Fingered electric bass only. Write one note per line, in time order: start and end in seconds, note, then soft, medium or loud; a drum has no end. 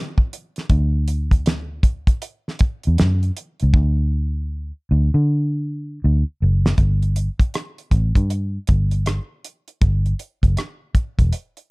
0.71 2.05 D2 loud
2.62 muted fingered electric bass stroke soft
2.87 2.97 E2 medium
3.01 3.30 F#2 medium
3.63 3.72 C#2 medium
3.75 4.70 D2 loud
4.91 5.09 D2 medium
5.14 5.99 D3 medium
6.04 6.22 D2 medium
6.42 6.71 F#1 medium
6.79 7.28 G1 loud
7.41 muted fingered electric bass stroke soft
7.93 8.11 A1 medium
8.17 8.57 G2 medium
8.70 9.18 G1 medium
9.83 10.12 G1 loud
10.44 10.55 F#1 medium
10.96 muted fingered electric bass stroke soft
11.20 11.31 E1 medium